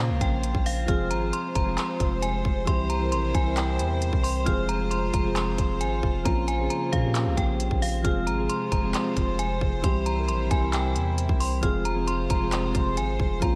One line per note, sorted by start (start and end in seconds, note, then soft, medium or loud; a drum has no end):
0.00 0.11 A#2 loud
0.00 0.87 C#3 medium
0.00 0.87 A#3 medium
0.00 2.63 F4 medium
0.00 8.01 C5 loud
0.00 0.18 F5 medium
0.10 0.21 C#2 loud
0.21 0.53 A#1 loud
0.21 0.63 G5 medium
0.21 kick loud
0.21 closed hi-hat medium
0.43 closed hi-hat medium
0.55 0.87 A#1 loud
0.55 kick medium
0.66 0.84 F5 medium
0.66 open hi-hat medium
0.86 1.12 F1 loud
0.86 6.22 C3 medium
0.86 1.08 F3 loud
0.86 1.09 G#3 medium
0.86 2.66 G#3 medium
0.86 1.09 C4 medium
0.86 1.10 F4 medium
0.86 1.06 F6 medium
0.86 kick loud
0.86 closed hi-hat medium
0.90 1.10 G#4 loud
1.11 1.32 G#1 medium
1.11 1.29 A#5 medium
1.11 closed hi-hat medium
1.20 1.49 F3 medium
1.20 1.50 G#3 medium
1.20 1.50 C4 medium
1.20 1.51 F4 medium
1.24 1.51 G#4 medium
1.33 1.51 C6 medium
1.33 closed hi-hat medium
1.55 1.77 F1 loud
1.55 1.73 A#5 medium
1.55 kick loud
1.55 closed hi-hat medium
1.65 2.22 F3 medium
1.65 2.23 G#3 medium
1.65 2.23 C4 medium
1.65 2.24 F4 medium
1.69 2.24 G#4 medium
1.78 2.20 C6 medium
1.78 clap loud
1.78 closed hi-hat medium
2.00 2.43 F1 loud
2.00 kick loud
2.00 closed hi-hat medium
2.22 2.40 G#5 medium
2.22 closed hi-hat medium
2.45 2.66 F1 loud
2.45 kick medium
2.65 3.14 C2 loud
2.65 2.87 E3 loud
2.65 2.88 G3 medium
2.65 4.45 G3 medium
2.65 2.88 C4 medium
2.65 4.45 E4 medium
2.65 2.89 E4 medium
2.65 2.85 C6 loud
2.65 kick loud
2.65 closed hi-hat medium
2.69 2.90 G4 loud
2.90 3.08 A#5 medium
2.90 closed hi-hat medium
2.99 3.28 E3 medium
2.99 3.29 G3 medium
2.99 3.29 C4 medium
2.99 3.30 E4 medium
3.03 3.30 A#4 medium
3.12 3.33 A#1 loud
3.12 3.30 C6 medium
3.12 closed hi-hat medium
3.35 3.81 C2 loud
3.35 3.53 G#5 medium
3.35 kick loud
3.35 closed hi-hat medium
3.44 4.01 E3 medium
3.44 4.02 G3 medium
3.44 4.02 C4 medium
3.44 4.03 E4 medium
3.48 4.03 A#4 medium
3.57 4.20 G5 medium
3.57 clap loud
3.57 closed hi-hat medium
3.79 4.11 E2 loud
3.79 closed hi-hat medium
4.02 closed hi-hat medium
4.13 4.45 C2 loud
4.13 kick medium
4.23 4.42 C6 medium
4.23 open hi-hat medium
4.44 5.11 F1 loud
4.44 4.67 F3 loud
4.44 4.67 G#3 medium
4.44 6.24 G#3 medium
4.44 4.68 C4 medium
4.44 8.01 F4 medium
4.44 4.68 F4 loud
4.44 4.64 F6 medium
4.44 kick loud
4.44 closed hi-hat medium
4.48 4.69 G#4 loud
4.69 4.87 A#5 medium
4.69 closed hi-hat medium
4.78 5.07 F3 medium
4.78 5.08 G#3 medium
4.78 5.08 C4 medium
4.78 5.09 F4 medium
4.82 5.09 G#4 medium
4.91 5.09 C6 medium
4.91 closed hi-hat medium
5.14 5.57 F1 loud
5.14 5.32 A#5 medium
5.14 kick loud
5.14 closed hi-hat medium
5.23 5.80 F3 medium
5.23 5.81 G#3 medium
5.23 5.81 C4 medium
5.23 5.82 F4 medium
5.27 5.82 G#4 medium
5.35 5.78 C6 medium
5.35 clap loud
5.35 closed hi-hat medium
5.58 5.82 F1 loud
5.58 kick loud
5.58 closed hi-hat medium
5.81 6.02 G#1 loud
5.81 5.99 G#5 medium
5.81 closed hi-hat medium
6.03 6.25 F1 loud
6.03 kick medium
6.23 6.69 A#1 loud
6.23 8.03 C#3 medium
6.23 6.46 F3 loud
6.23 6.46 A#3 medium
6.23 8.03 A#3 medium
6.23 6.47 C4 medium
6.23 6.47 C#4 medium
6.23 6.43 A#5 medium
6.23 kick loud
6.23 closed hi-hat medium
6.28 6.48 F4 loud
6.48 6.66 G#5 medium
6.48 closed hi-hat medium
6.57 6.86 F3 medium
6.57 6.87 A#3 medium
6.57 6.88 C4 medium
6.57 6.88 C#4 medium
6.61 6.89 G#4 medium
6.70 6.88 A#5 medium
6.70 closed hi-hat medium
6.92 7.28 A#2 loud
6.92 7.35 F5 medium
6.92 kick loud
6.92 closed hi-hat medium
7.02 7.59 F3 medium
7.02 7.60 A#3 medium
7.02 7.61 C4 medium
7.02 7.61 C#4 medium
7.06 7.62 G4 medium
7.15 clap loud
7.15 closed hi-hat medium
7.26 7.37 C#2 loud
7.37 7.70 A#1 loud
7.37 7.79 G5 medium
7.37 kick loud
7.37 closed hi-hat medium
7.60 closed hi-hat medium
7.71 8.03 A#1 loud
7.71 kick medium
7.82 8.00 F5 medium
7.82 open hi-hat medium
8.02 8.28 F1 loud
8.02 9.82 C3 medium
8.02 8.25 F3 loud
8.02 8.25 G#3 medium
8.02 9.82 G#3 medium
8.02 8.26 C4 medium
8.02 9.82 F4 medium
8.02 8.26 F4 medium
8.02 11.59 C5 medium
8.02 8.22 F6 medium
8.02 kick loud
8.02 closed hi-hat medium
8.06 8.27 G#4 loud
8.27 8.48 G#1 medium
8.27 8.45 A#5 medium
8.27 closed hi-hat medium
8.36 8.65 F3 medium
8.36 8.66 G#3 medium
8.36 8.67 C4 medium
8.36 8.67 F4 medium
8.40 8.68 G#4 medium
8.49 8.67 C6 medium
8.49 closed hi-hat medium
8.72 8.93 F1 loud
8.72 8.90 A#5 medium
8.72 kick loud
8.72 closed hi-hat medium
8.81 9.39 F3 medium
8.81 9.39 G#3 medium
8.81 9.40 C4 medium
8.81 9.40 F4 medium
8.85 9.41 G#4 medium
8.94 9.37 C6 medium
8.94 clap loud
8.94 closed hi-hat medium
9.17 9.60 F1 loud
9.17 kick loud
9.17 closed hi-hat medium
9.39 9.57 G#5 medium
9.39 closed hi-hat medium
9.61 9.83 F1 loud
9.61 kick medium
9.82 10.30 C2 loud
9.82 11.61 C3 medium
9.82 10.04 E3 loud
9.82 10.04 G3 medium
9.82 11.61 G3 medium
9.82 10.05 C4 medium
9.82 11.61 E4 medium
9.82 10.05 E4 medium
9.82 10.02 C6 medium
9.82 kick loud
9.82 closed hi-hat medium
9.86 10.06 G4 loud
10.06 10.24 A#5 medium
10.06 closed hi-hat medium
10.15 10.45 E3 medium
10.15 10.45 G3 medium
10.15 10.46 C4 medium
10.15 10.46 E4 medium
10.20 10.47 A#4 medium
10.28 10.50 A#1 loud
10.28 10.46 C6 medium
10.28 closed hi-hat medium
10.51 10.97 C2 loud
10.51 10.69 G#5 medium
10.51 kick loud
10.51 closed hi-hat medium
10.60 11.18 E3 medium
10.60 11.18 G3 medium
10.60 11.19 C4 medium
10.60 11.19 E4 medium
10.64 11.20 A#4 medium
10.73 11.37 G5 medium
10.73 clap loud
10.73 closed hi-hat medium
10.96 11.28 E2 loud
10.96 closed hi-hat medium
11.18 closed hi-hat medium
11.29 11.61 C2 loud
11.29 kick medium
11.40 11.58 C6 medium
11.40 open hi-hat medium
11.61 12.27 F1 loud
11.61 13.40 C3 medium
11.61 11.83 F3 loud
11.61 11.84 G#3 medium
11.61 13.40 G#3 medium
11.61 11.84 C4 loud
11.61 13.40 F4 medium
11.61 11.85 F4 loud
11.61 13.55 C5 loud
11.61 11.81 F6 medium
11.61 kick loud
11.61 closed hi-hat medium
11.65 11.85 G#4 loud
11.85 12.03 A#5 medium
11.85 closed hi-hat medium
11.94 12.24 F3 medium
11.94 12.24 G#3 medium
11.94 12.25 C4 medium
11.94 12.25 F4 medium
11.98 12.26 G#4 medium
12.07 12.25 C6 medium
12.07 closed hi-hat medium
12.30 12.73 F1 loud
12.30 12.48 A#5 medium
12.30 kick loud
12.30 closed hi-hat medium
12.39 12.97 F3 medium
12.39 12.97 G#3 medium
12.39 12.98 C4 medium
12.39 12.98 F4 medium
12.43 12.99 G#4 medium
12.52 12.94 C6 medium
12.52 clap loud
12.52 closed hi-hat medium
12.75 12.99 F1 loud
12.75 kick loud
12.75 closed hi-hat medium
12.97 13.18 G#1 loud
12.97 13.15 G#5 medium
12.97 closed hi-hat medium
13.20 13.41 F1 loud
13.20 kick medium
13.40 13.55 A#1 loud
13.40 13.55 C#3 medium
13.40 13.55 F3 loud
13.40 13.55 A#3 medium
13.40 13.55 C4 loud
13.40 13.55 C#4 medium
13.40 13.55 F4 medium
13.40 13.55 A#5 medium
13.40 kick loud
13.40 closed hi-hat medium
13.44 13.55 F4 loud